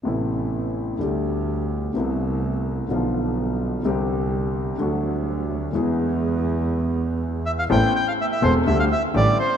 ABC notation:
X:1
M:4/4
L:1/16
Q:1/4=125
K:Am
V:1 name="Bandoneon"
z16 | z16 | z16 | z12 z2 e f |
g2 g f e e c2 e f e2 d2 c2 |]
V:2 name="Grand piano" clef=bass
[A,,,A,,C,A,B,E]8 [D,,D,G,A,G]8 | [C,,C,A,B,E]8 [B,,,B,,D,F,B,F]8 | [C,,C,D,G,CG]8 [D,,D,^F,A,^F]8 | [E,,E,^G,B,^G]16 |
[A,,,A,,E,B,CA]2 z4 [E,,,E,,E,B,CA]2 [D,,D,G,A,G]2 z2 [A,,,A,,D,G,A,G]2 z2 |]
V:3 name="Double bass" clef=bass
A,,,8 D,,8 | C,,8 B,,,8 | C,,8 D,,8 | E,,16 |
A,,,2 z4 E,,,2 D,,2 z2 A,,,2 z2 |]